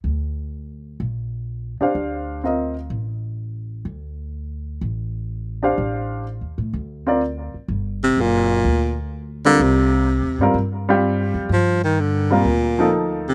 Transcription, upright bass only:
X:1
M:4/4
L:1/8
Q:"Swing" 1/4=126
K:Gm
V:1 name="Upright bass" clef=bass
D,,4 B,,,3 z | D,,4 A,,,4 | D,,4 A,,,4 | A,,,2- (3A,,, E,, A,, D,,3 z |
G,,,2 ^F,,,2 D,,4 | C,,2- (3C,, E,, G,, G,,3 F,, | G,,4 D,,4 |]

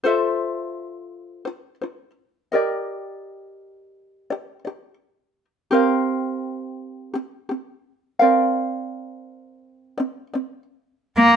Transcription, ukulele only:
X:1
M:4/4
L:1/8
Q:1/4=84
K:F
V:1 name="Ukulele"
[FAce]4 [Fc] [Fc] z [GBd_e]- | [GBd_e]4 [Gd] [Gd] z2 | [CGBf]4 [CG] [CG] z [CBdf]- | [CBdf]4 [Cd] [Cd] z2 |]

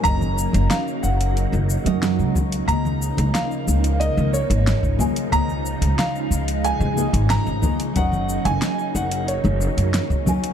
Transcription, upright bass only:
X:1
M:4/4
L:1/16
Q:1/4=91
K:Db
V:1 name="Upright bass" clef=bass
G,,,2 z G,,, z2 G,,,2 z G,,, z G,,2 D,,2 z | D,,2 z D,, z2 D,,2 z D,, z A,,, z A,,, z2 | D,,2 z D,, z2 D,,2 z D,, z A,,, z A,,, z2 | G,,,2 z G,,, z2 G,,,2 z G,,, z G,, z D,, z2 |]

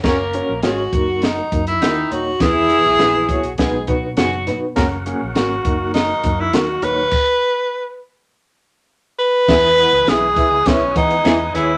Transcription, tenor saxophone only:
X:1
M:4/4
L:1/16
Q:1/4=102
K:Elyd
V:1 name="Tenor saxophone"
z4 F4 D3 E3 F2 | G8 z8 | z4 F4 D3 E F2 B2- | B6 z8 B2- |
B4 G4 C2 D4 E2 |]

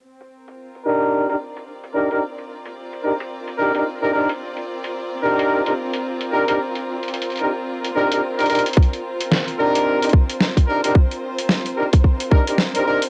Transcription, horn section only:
X:1
M:4/4
L:1/16
Q:"Swing 16ths" 1/4=110
K:Cm
V:1 name="Horn section"
z6 [DEGB]3 [DEGB] z4 [DEGB] [DEGB] | z6 [DEGB] z3 [DEGB] [DEGB] z [DEGB] [DEGB] z | z6 [DEGB]3 [DEGB] z4 [DEGB] [DEGB] | z6 [DEGB] z3 [DEGB] [DEGB] z [DEGB] [DEGB] z |
z6 [DEGB]3 [DEGB] z4 [DEGB] [DEGB] | z6 [DEGB] z3 [DEGB] [DEGB] z [DEGB] [DEGB] z |]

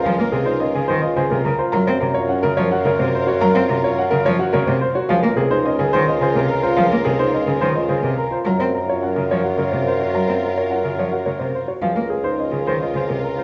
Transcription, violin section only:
X:1
M:3/4
L:1/16
Q:1/4=107
K:Db
V:1 name="Violin section"
[FB]8- [FB]3 z | [FB]12- | [FB]8- [FB]3 z | [FB]12- |
[FB]8- [FB]3 z | [FB]12- | [FB]8- [FB]3 z | [FB]12 |]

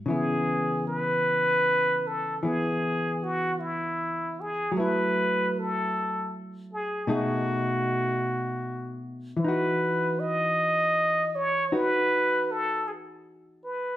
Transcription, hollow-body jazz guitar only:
X:1
M:4/4
L:1/8
Q:"Swing" 1/4=52
K:C#m
V:1 name="Hollow-body jazz guitar"
[C,E,B,]4 [E,B,]4 | [F,A,E]4 [B,,A,DG]4 | [E,DF]4 [DF]4 |]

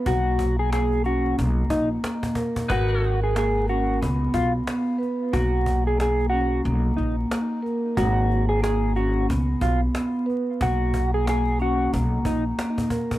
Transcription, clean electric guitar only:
X:1
M:4/4
L:1/16
Q:"Swing 16ths" 1/4=91
K:G#m
V:1 name="Clean electric guitar"
F3 G G2 F2 z2 D z4 z | F3 G G2 F2 z2 ^E z4 z | F3 G G2 F2 z2 D z4 z | F3 G G2 F2 z2 ^E z4 z |
F3 G G2 F2 z2 D z4 z |]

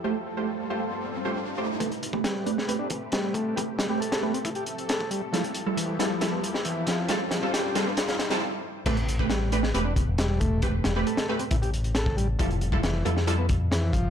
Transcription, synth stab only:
X:1
M:4/4
L:1/16
Q:1/4=136
K:Am
V:1 name="Synth stab"
[A,FGc] z2 [A,FGc]3 [A,FGc] z4 [A,FGc] z2 [A,FGc] z | [A,CGB] z2 [A,CGB] z2 [A,CGB] z [A,CGB] z6 z | [A,CGB] z2 [A,CGB]3 [A,CGB] z8 z | [G,EFA] z2 [G,EFA] z2 [G,EFA] z [G,EFA] z6 z |
[G,CFA] z2 [G,CFA]3 [G,CFA] z4 [G,CFA] z4 | [A,CGB] z2 [A,CGB] z2 [A,CGB] z [A,CGB] z6 z | [A,CGB] z2 [A,CGB]3 [A,CGB] z8 z | [G,EFA] z2 [G,EFA] z2 [G,EFA] z [G,EFA] z6 z |]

